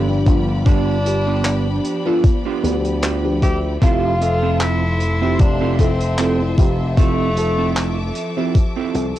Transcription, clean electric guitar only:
0.66 0.96 B3 loud
0.66 0.97 D4 loud
0.66 0.97 F4 loud
0.66 0.97 G4 loud
1.27 1.66 B3 medium
1.27 1.66 D4 medium
1.27 1.67 F4 medium
1.27 1.67 G4 loud
2.06 2.24 B3 medium
2.06 2.24 D4 medium
2.06 2.24 F4 medium
2.06 2.24 A4 loud
2.45 2.74 B3 loud
2.45 2.74 D4 loud
2.45 2.74 F4 loud
2.45 2.75 G4 loud
3.03 3.24 B3 medium
3.03 3.24 D4 medium
3.03 3.25 F4 medium
3.03 3.25 G4 loud
3.81 4.12 C4 loud
3.81 4.12 E4 loud
3.81 4.13 F4 loud
3.81 4.13 A4 loud
4.42 4.82 C4 medium
4.42 4.82 E4 medium
4.42 4.82 F4 medium
4.42 4.83 A4 loud
5.21 5.39 C4 medium
5.21 5.39 E4 medium
5.21 5.40 F4 medium
5.21 5.40 A4 loud
5.60 5.90 C4 loud
5.60 5.90 E4 loud
5.60 5.90 F4 loud
5.60 5.90 A4 loud
6.18 6.40 C4 medium
6.18 6.40 E4 medium
6.18 6.40 F4 medium
6.18 6.40 G4 loud
6.97 7.28 C4 loud
6.97 7.28 E4 loud
6.97 7.28 F4 loud
6.97 7.28 A4 loud
7.58 7.98 C4 medium
7.58 7.98 E4 medium
7.58 7.98 F4 medium
7.58 7.98 A4 loud
8.37 8.55 C4 loud
8.37 8.55 E4 medium
8.37 8.56 F4 medium
8.37 8.56 A4 loud
8.76 9.05 C4 loud
8.76 9.06 E4 loud
8.76 9.06 F4 loud
8.76 9.06 A4 loud

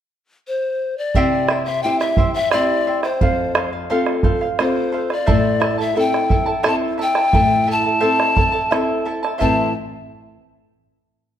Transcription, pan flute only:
0.48 0.99 C5 medium
0.98 1.65 D5 medium
1.65 1.84 E5 medium
1.83 2.01 G5 medium
2.00 2.33 E5 medium
2.34 2.53 E5 medium
2.52 3.03 D5 medium
3.04 3.69 C5 medium
4.62 5.14 C5 medium
5.13 5.80 D5 medium
5.80 6.00 E5 medium
5.99 6.67 G5 medium
6.68 6.75 A5 medium
7.02 7.73 G5 loud
7.71 9.07 A5 medium
9.42 9.73 A5 medium

